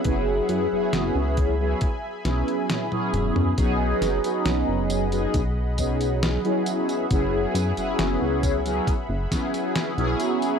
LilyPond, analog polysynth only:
\new Staff \with { instrumentName = "Analog polysynth" } { \time 4/4 \key b \major \tempo 4 = 68 <fis b cis' e' gis'>8. <fis b cis' e' gis'>4 <fis b cis' e' gis'>16 r8 <fis b cis' e' gis'>8. <fis b cis' e' gis'>8. | <fis b cis' dis' gis'>8. <fis b cis' dis' gis'>4 <fis b cis' dis' gis'>16 r8 <fis b cis' dis' gis'>8. <fis b cis' e' gis'>8. | <fis b cis' e' gis'>8. <fis b cis' e' gis'>4 <fis b cis' e' gis'>16 r8 <fis b cis' e' gis'>8. <fis b cis' e' gis'>8. | }